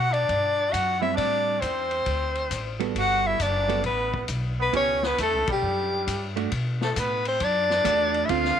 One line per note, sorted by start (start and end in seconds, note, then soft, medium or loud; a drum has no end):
0.00 0.27 B2 medium
0.00 0.13 F#4 medium
0.00 0.15 F#5 medium
0.11 0.71 D4 medium
0.11 0.74 D5 loud
0.11 ride soft
0.29 0.72 G2 medium
0.29 kick soft
0.29 ride soft
0.70 1.16 F#2 medium
0.70 0.99 F#4 medium
0.70 1.02 F#5 medium
0.70 kick soft
0.70 hi-hat pedal medium
0.70 ride medium
1.00 1.59 G3 soft
1.00 1.59 C4 medium
1.00 1.13 E4 medium
1.00 1.59 E4 medium
1.00 1.16 E5 medium
1.14 1.60 A2 medium
1.14 1.61 D4 medium
1.14 1.63 D5 medium
1.14 kick soft
1.14 ride medium
1.59 2.05 E2 medium
1.59 2.79 C4 medium
1.59 2.80 C5 medium
1.59 kick soft
1.59 hi-hat pedal medium
1.59 ride medium
1.91 ride soft
2.06 2.49 D2 medium
2.06 kick soft
2.06 ride medium
2.35 ride soft
2.51 2.94 A1 medium
2.51 kick soft
2.51 hi-hat pedal medium
2.51 ride medium
2.80 3.37 G3 medium
2.80 3.37 B3 medium
2.80 3.37 F#4 medium
2.80 3.37 A4 medium
2.80 ride soft
2.95 3.38 G1 medium
2.95 3.28 F#4 medium
2.95 3.29 F#5 loud
2.95 kick soft
2.95 ride medium
3.27 3.43 E4 medium
3.27 3.44 E5 medium
3.40 3.83 F#1 medium
3.40 3.85 D4 medium
3.40 3.86 D5 medium
3.40 kick soft
3.40 hi-hat pedal medium
3.40 ride medium
3.69 3.83 G3 medium
3.69 3.83 B3 medium
3.69 3.83 F#4 medium
3.69 3.83 A4 medium
3.69 ride soft
3.84 4.27 A1 medium
3.84 4.27 B3 medium
3.84 4.27 B4 medium
3.84 kick soft
3.84 ride soft
4.14 kick medium
4.28 4.72 B1 medium
4.28 kick soft
4.28 hi-hat pedal soft
4.28 ride medium
4.59 4.73 B3 medium
4.59 4.74 B4 medium
4.73 5.17 C#2 medium
4.73 5.00 B3 medium
4.73 5.05 C#4 medium
4.73 5.00 E4 medium
4.73 5.00 G4 medium
4.73 5.08 C#5 loud
4.73 kick soft
4.73 ride medium
5.03 5.19 B3 medium
5.03 snare soft
5.07 5.20 B4 medium
5.18 5.33 E2 medium
5.18 5.46 A3 medium
5.18 kick soft
5.18 hi-hat pedal soft
5.18 ride medium
5.23 5.48 A4 medium
5.33 5.48 C#2 soft
5.47 5.62 B1 medium
5.47 6.33 G3 medium
5.47 kick medium
5.47 ride medium
5.52 6.35 G4 medium
5.62 6.05 F#2 medium
6.07 6.50 G2 medium
6.07 kick soft
6.07 hi-hat pedal soft
6.07 ride medium
6.36 6.50 A3 medium
6.36 6.50 D4 medium
6.36 6.50 F#4 medium
6.36 ride soft
6.52 6.94 B2 medium
6.52 kick soft
6.52 ride medium
6.81 6.92 A3 medium
6.81 6.94 A4 medium
6.81 snare soft
6.92 6.99 A3 soft
6.92 7.01 A4 medium
6.96 7.39 A2 medium
6.96 7.26 B3 medium
6.96 7.27 B4 medium
6.96 kick soft
6.96 hi-hat pedal medium
6.96 ride medium
7.25 7.43 C4 medium
7.25 7.46 C5 medium
7.25 ride soft
7.40 7.83 F#2 medium
7.40 8.26 D4 medium
7.40 kick soft
7.40 ride medium
7.44 8.27 D5 loud
7.70 snare soft
7.84 8.28 E2 medium
7.84 8.29 A3 medium
7.84 8.29 D4 medium
7.84 8.29 F#4 medium
7.84 kick soft
7.84 hi-hat pedal medium
7.84 ride medium
8.14 ride soft
8.25 8.31 E4 medium
8.25 8.31 E5 medium
8.29 8.56 D2 medium
8.29 8.55 D3 medium
8.29 8.56 C4 medium
8.29 8.60 F4 medium
8.29 8.56 F4 medium
8.29 8.56 A4 medium
8.29 8.60 F5 loud
8.29 kick soft
8.29 ride medium
8.44 snare soft